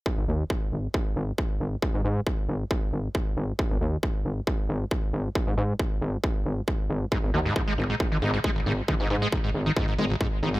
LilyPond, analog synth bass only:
\new Staff \with { instrumentName = "Analog synth bass" } { \clef bass \time 4/4 \key dis \phrygian \tempo 4 = 136 r16 gis,,16 dis,16 r8. gis,,16 r8. gis,,16 r8. gis,,16 r16 | r16 gis,16 gis,16 r8. gis,,16 r8. gis,,16 r8. gis,,16 r16 | r16 gis,,16 dis,16 r8. gis,,16 r8. gis,,16 r8. gis,,16 r16 | r16 gis,16 gis,16 r8. gis,,16 r8. gis,,16 r8. gis,,16 r16 |
r16 gis,,16 dis,16 r8. gis,,16 r8. gis,,16 r8. gis,,16 r16 | r16 gis,16 gis,16 r8. gis,,16 r8. gis,,16 r8. gis,,16 r16 | }